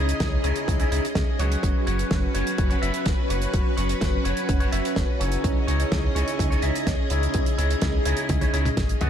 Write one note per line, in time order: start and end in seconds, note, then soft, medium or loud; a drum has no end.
0.00 0.14 C#2 medium
0.00 0.41 C#3 medium
0.00 1.59 C#4 medium
0.00 0.41 D#4 medium
0.00 0.41 E4 medium
0.00 0.41 G#4 medium
0.00 1.59 G#4 medium
0.00 0.41 C#5 medium
0.00 1.59 D#5 medium
0.09 closed hi-hat medium
0.20 0.37 C#2 loud
0.20 kick loud
0.20 snare loud
0.20 closed hi-hat medium
0.44 0.53 C#2 medium
0.44 0.77 C#3 medium
0.44 0.77 D#4 medium
0.44 0.77 E4 medium
0.44 0.77 G#4 medium
0.44 0.77 C#5 loud
0.44 closed hi-hat medium
0.56 closed hi-hat medium
0.68 0.85 C#2 loud
0.68 kick loud
0.68 closed hi-hat loud
0.79 0.89 C#3 medium
0.79 0.89 D#4 medium
0.79 0.89 E4 medium
0.79 0.89 G#4 medium
0.79 0.89 C#5 medium
0.79 closed hi-hat medium
0.91 1.00 C#2 medium
0.91 1.06 C#3 medium
0.91 1.06 D#4 medium
0.91 1.06 E4 medium
0.91 1.06 G#4 medium
0.91 1.06 C#5 loud
0.91 closed hi-hat medium
1.05 closed hi-hat medium
1.15 1.24 C#2 loud
1.15 kick loud
1.15 snare loud
1.15 closed hi-hat medium
1.39 1.56 C#2 loud
1.39 1.84 F#3 medium
1.39 1.84 C#4 medium
1.39 1.84 F#4 medium
1.39 1.84 B4 medium
1.39 1.84 C#5 loud
1.39 closed hi-hat medium
1.52 closed hi-hat medium
1.63 1.72 F#1 medium
1.63 9.10 C#4 medium
1.63 5.40 F#4 medium
1.63 5.40 B4 medium
1.63 kick loud
1.63 closed hi-hat medium
1.87 2.04 F#1 medium
1.87 2.32 F#3 medium
1.87 2.32 C#4 medium
1.87 2.32 F#4 medium
1.87 2.32 B4 medium
1.87 2.32 C#5 medium
1.87 closed hi-hat medium
1.99 closed hi-hat medium
2.11 2.28 F#1 loud
2.11 kick loud
2.11 snare loud
2.11 closed hi-hat medium
2.34 2.43 F#1 medium
2.34 2.68 F#3 medium
2.34 2.67 C#4 medium
2.34 2.68 F#4 medium
2.34 2.68 B4 medium
2.34 2.67 C#5 loud
2.34 closed hi-hat medium
2.47 closed hi-hat medium
2.58 2.75 F#1 medium
2.58 kick loud
2.58 closed hi-hat medium
2.70 2.79 F#3 medium
2.70 2.79 C#4 medium
2.70 2.79 F#4 medium
2.70 2.79 B4 medium
2.70 2.79 C#5 loud
2.70 closed hi-hat medium
2.82 2.91 F#1 medium
2.82 3.04 F#3 medium
2.82 3.04 C#4 medium
2.82 3.04 F#4 medium
2.82 3.04 B4 medium
2.82 3.04 E5 loud
2.82 closed hi-hat medium
2.94 closed hi-hat medium
3.06 3.15 F#1 loud
3.06 kick loud
3.06 snare loud
3.06 closed hi-hat medium
3.29 3.47 F#1 loud
3.29 3.75 F#3 medium
3.29 3.75 C#4 medium
3.29 3.75 F#4 medium
3.29 3.75 B4 medium
3.29 3.75 C#5 medium
3.29 closed hi-hat medium
3.42 closed hi-hat medium
3.54 3.62 F#1 loud
3.54 kick loud
3.54 closed hi-hat medium
3.77 3.95 F#1 medium
3.77 4.22 F#3 medium
3.77 4.22 C#4 medium
3.77 4.22 F#4 medium
3.77 4.22 B4 medium
3.77 4.22 C#5 medium
3.77 closed hi-hat medium
3.89 closed hi-hat medium
4.01 4.18 F#1 loud
4.01 kick loud
4.01 snare loud
4.01 closed hi-hat medium
4.25 4.34 F#1 medium
4.25 4.58 F#3 medium
4.25 4.58 C#4 medium
4.25 4.58 F#4 medium
4.25 4.58 B4 medium
4.25 4.58 C#5 medium
4.25 closed hi-hat medium
4.37 closed hi-hat medium
4.49 4.66 F#1 loud
4.49 kick loud
4.49 closed hi-hat loud
4.60 4.70 F#3 medium
4.60 4.70 C#4 medium
4.60 4.70 F#4 medium
4.60 4.70 B4 medium
4.60 4.70 C#5 medium
4.60 closed hi-hat medium
4.72 4.81 F#1 medium
4.72 4.95 F#3 medium
4.72 4.95 C#4 medium
4.72 4.95 F#4 medium
4.72 4.95 B4 medium
4.72 4.95 E5 loud
4.72 closed hi-hat medium
4.85 closed hi-hat medium
4.96 5.05 F#1 loud
4.96 kick loud
4.96 snare loud
4.96 closed hi-hat medium
5.20 5.37 F#1 loud
5.20 5.65 C#3 medium
5.20 5.65 D#4 medium
5.20 5.65 E4 medium
5.20 5.65 G#4 medium
5.20 5.65 C#5 medium
5.20 closed hi-hat medium
5.32 closed hi-hat medium
5.44 5.53 C#2 loud
5.44 9.10 G#4 medium
5.44 9.10 D#5 medium
5.44 kick loud
5.44 closed hi-hat medium
5.67 5.85 C#2 medium
5.67 6.13 C#3 medium
5.67 6.13 D#4 medium
5.67 6.13 E4 medium
5.67 6.13 G#4 medium
5.67 6.13 C#5 medium
5.67 closed hi-hat medium
5.80 closed hi-hat medium
5.92 6.09 C#2 loud
5.92 kick loud
5.92 snare loud
5.92 closed hi-hat medium
6.15 6.24 C#2 medium
6.15 6.48 C#3 medium
6.15 6.48 D#4 medium
6.15 6.48 E4 medium
6.15 6.48 G#4 medium
6.15 6.48 C#5 loud
6.15 closed hi-hat medium
6.28 closed hi-hat medium
6.39 6.56 C#2 loud
6.39 kick loud
6.39 closed hi-hat loud
6.50 6.60 C#3 medium
6.50 6.60 D#4 medium
6.50 6.60 E4 medium
6.50 6.60 G#4 medium
6.50 6.60 C#5 loud
6.50 closed hi-hat soft
6.62 6.72 C#2 medium
6.62 6.85 C#3 medium
6.62 6.85 D#4 medium
6.62 6.85 E4 medium
6.62 6.85 G#4 medium
6.62 6.85 E5 loud
6.62 closed hi-hat medium
6.76 closed hi-hat medium
6.87 6.95 C#2 loud
6.87 kick loud
6.87 snare loud
6.87 closed hi-hat medium
7.10 7.28 C#2 loud
7.10 7.56 C#3 medium
7.10 7.56 D#4 medium
7.10 7.56 E4 medium
7.10 7.56 G#4 medium
7.10 7.56 C#5 medium
7.10 closed hi-hat medium
7.23 closed hi-hat medium
7.34 7.43 C#2 medium
7.34 kick loud
7.34 closed hi-hat medium
7.46 closed hi-hat medium
7.58 7.76 C#2 medium
7.58 8.03 C#3 medium
7.58 8.03 D#4 medium
7.58 8.03 E4 medium
7.58 8.03 G#4 medium
7.58 8.03 C#5 medium
7.58 closed hi-hat medium
7.71 closed hi-hat medium
7.82 7.99 C#2 loud
7.82 kick loud
7.82 snare loud
7.82 closed hi-hat medium
8.05 8.15 C#2 medium
8.05 8.39 C#3 medium
8.05 8.39 D#4 medium
8.05 8.39 E4 medium
8.05 8.39 G#4 medium
8.05 8.39 C#5 loud
8.05 closed hi-hat loud
8.17 closed hi-hat medium
8.29 8.47 C#2 loud
8.29 kick loud
8.29 closed hi-hat medium
8.29 high tom medium
8.41 8.51 C#3 medium
8.41 8.51 D#4 medium
8.41 8.51 E4 medium
8.41 8.51 G#4 medium
8.41 8.51 C#5 medium
8.41 closed hi-hat medium
8.41 high tom medium
8.53 8.71 C#2 loud
8.53 8.67 C#3 medium
8.53 8.67 D#4 medium
8.53 8.67 E4 medium
8.53 8.67 G#4 medium
8.53 8.67 C#5 loud
8.53 closed hi-hat medium
8.65 closed hi-hat medium
8.65 mid tom medium
8.77 8.95 G#1 medium
8.77 kick loud
8.77 snare loud
8.77 closed hi-hat medium
8.77 mid tom medium
8.89 closed hi-hat medium
9.01 9.10 C#2 loud
9.01 9.10 B2 medium
9.01 9.10 D#4 medium
9.01 9.10 F#4 medium
9.01 9.10 B4 medium
9.01 9.10 D#5 loud
9.01 closed hi-hat medium
9.01 mid tom medium